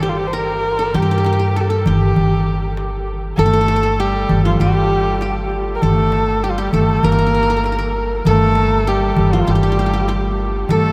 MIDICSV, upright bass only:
0, 0, Header, 1, 2, 480
1, 0, Start_track
1, 0, Tempo, 609756
1, 745, Time_signature, 4, 2, 24, 8
1, 8599, End_track
2, 0, Start_track
2, 0, Title_t, "Upright bass"
2, 0, Program_c, 0, 32
2, 0, Note_on_c, 0, 31, 81
2, 714, Note_off_c, 0, 31, 0
2, 750, Note_on_c, 0, 43, 91
2, 1470, Note_on_c, 0, 31, 88
2, 1482, Note_off_c, 0, 43, 0
2, 1695, Note_off_c, 0, 31, 0
2, 1709, Note_on_c, 0, 31, 77
2, 2637, Note_off_c, 0, 31, 0
2, 2666, Note_on_c, 0, 31, 102
2, 3355, Note_off_c, 0, 31, 0
2, 3389, Note_on_c, 0, 31, 84
2, 3615, Note_off_c, 0, 31, 0
2, 3634, Note_on_c, 0, 31, 80
2, 4559, Note_off_c, 0, 31, 0
2, 4592, Note_on_c, 0, 31, 81
2, 5277, Note_off_c, 0, 31, 0
2, 5307, Note_on_c, 0, 31, 81
2, 5533, Note_off_c, 0, 31, 0
2, 5546, Note_on_c, 0, 31, 78
2, 6473, Note_off_c, 0, 31, 0
2, 6505, Note_on_c, 0, 31, 100
2, 7192, Note_off_c, 0, 31, 0
2, 7225, Note_on_c, 0, 31, 88
2, 7450, Note_off_c, 0, 31, 0
2, 7461, Note_on_c, 0, 31, 76
2, 8388, Note_off_c, 0, 31, 0
2, 8422, Note_on_c, 0, 31, 85
2, 8599, Note_off_c, 0, 31, 0
2, 8599, End_track
0, 0, End_of_file